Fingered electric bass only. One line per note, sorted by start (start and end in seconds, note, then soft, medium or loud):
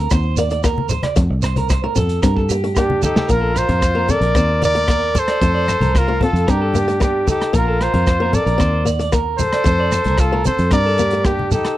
0.11 1.01 D#2 loud
1.17 1.28 F2 medium
1.30 1.86 C2 medium
1.97 2.19 F2 medium
2.23 3.12 G2 medium
3.30 3.63 A#1 medium
3.69 4.14 F2 medium
4.21 4.33 A#1 medium
4.35 5.25 D#2 medium
5.42 5.75 F2 medium
5.80 6.25 C2 medium
6.33 6.45 F2 medium
6.48 7.37 G2 medium
7.54 7.87 A#1 medium
7.94 8.39 F2 medium
8.46 8.58 A#1 medium
8.61 9.50 D#2 medium
9.66 9.99 F2 medium
10.06 10.50 C2 medium
10.59 10.70 F2 medium
10.71 11.61 G2 medium